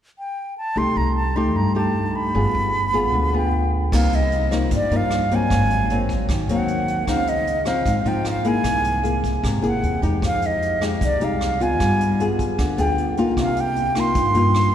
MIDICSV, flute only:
0, 0, Header, 1, 2, 480
1, 0, Start_track
1, 0, Tempo, 393959
1, 930, Time_signature, 4, 2, 24, 8
1, 17970, End_track
2, 0, Start_track
2, 0, Title_t, "Flute"
2, 0, Program_c, 0, 73
2, 229, Note_on_c, 0, 79, 77
2, 667, Note_off_c, 0, 79, 0
2, 703, Note_on_c, 0, 81, 82
2, 949, Note_on_c, 0, 84, 94
2, 967, Note_off_c, 0, 81, 0
2, 1184, Note_on_c, 0, 82, 83
2, 1202, Note_off_c, 0, 84, 0
2, 1408, Note_off_c, 0, 82, 0
2, 1415, Note_on_c, 0, 81, 81
2, 1660, Note_on_c, 0, 84, 81
2, 1679, Note_off_c, 0, 81, 0
2, 1905, Note_on_c, 0, 82, 86
2, 1923, Note_off_c, 0, 84, 0
2, 2140, Note_off_c, 0, 82, 0
2, 2155, Note_on_c, 0, 81, 77
2, 2628, Note_on_c, 0, 83, 93
2, 2646, Note_off_c, 0, 81, 0
2, 4064, Note_off_c, 0, 83, 0
2, 4100, Note_on_c, 0, 79, 73
2, 4527, Note_off_c, 0, 79, 0
2, 4812, Note_on_c, 0, 77, 87
2, 5057, Note_on_c, 0, 75, 88
2, 5075, Note_off_c, 0, 77, 0
2, 5518, Note_off_c, 0, 75, 0
2, 5797, Note_on_c, 0, 74, 93
2, 6048, Note_on_c, 0, 77, 85
2, 6066, Note_off_c, 0, 74, 0
2, 6521, Note_on_c, 0, 80, 106
2, 6540, Note_off_c, 0, 77, 0
2, 7450, Note_off_c, 0, 80, 0
2, 7946, Note_on_c, 0, 78, 80
2, 8593, Note_off_c, 0, 78, 0
2, 8638, Note_on_c, 0, 77, 91
2, 8880, Note_on_c, 0, 75, 92
2, 8898, Note_off_c, 0, 77, 0
2, 9349, Note_on_c, 0, 77, 83
2, 9367, Note_off_c, 0, 75, 0
2, 9841, Note_on_c, 0, 79, 85
2, 9859, Note_off_c, 0, 77, 0
2, 10068, Note_off_c, 0, 79, 0
2, 10102, Note_on_c, 0, 77, 94
2, 10330, Note_on_c, 0, 80, 102
2, 10348, Note_off_c, 0, 77, 0
2, 11272, Note_off_c, 0, 80, 0
2, 11779, Note_on_c, 0, 78, 76
2, 12204, Note_off_c, 0, 78, 0
2, 12506, Note_on_c, 0, 77, 93
2, 12747, Note_on_c, 0, 75, 89
2, 12766, Note_off_c, 0, 77, 0
2, 13200, Note_off_c, 0, 75, 0
2, 13457, Note_on_c, 0, 74, 88
2, 13697, Note_on_c, 0, 77, 82
2, 13715, Note_off_c, 0, 74, 0
2, 14160, Note_on_c, 0, 80, 100
2, 14178, Note_off_c, 0, 77, 0
2, 15105, Note_off_c, 0, 80, 0
2, 15585, Note_on_c, 0, 79, 77
2, 16024, Note_off_c, 0, 79, 0
2, 16340, Note_on_c, 0, 77, 91
2, 16576, Note_on_c, 0, 79, 98
2, 16595, Note_off_c, 0, 77, 0
2, 17057, Note_on_c, 0, 84, 96
2, 17075, Note_off_c, 0, 79, 0
2, 17970, Note_off_c, 0, 84, 0
2, 17970, End_track
0, 0, End_of_file